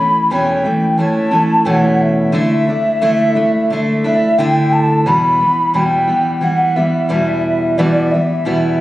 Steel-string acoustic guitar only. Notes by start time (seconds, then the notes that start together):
Already playing: E3 A3 C#4 E4
0.30 E2 B2 E3 A3 C#4 E4
0.63 E3 A3 C#4 E4
0.97 E3 A3 C#4 E4
1.31 E3 A3 C#4 E4
1.65 E2 B2 E3 A3 C#4 E4
2.32 D3 A3 D4 E4
2.67 A3 D4 E4
3.01 D3 A3 D4 E4
3.35 A3 D4 E4
3.70 D3 A3 D4 E4
4.04 A3 D4 E4
4.38 D3 A3 D4 E4
5.06 E2 B2 E3 G3 B3 E4
5.40 E3 G3 B3 E4
5.74 E2 B2 E3 G3 B3 E4
6.07 E3 G3 B3 E4
6.41 E3 G3 B3 E4
6.76 E3 G3 B3 E4
7.09 E2 B2 E3 G3 B3 E4
7.78 E2 B2 E3 G3 B3 E4
8.14 E3 G3 B3 E4
8.45 E2 B2 E3 G3 B3 E4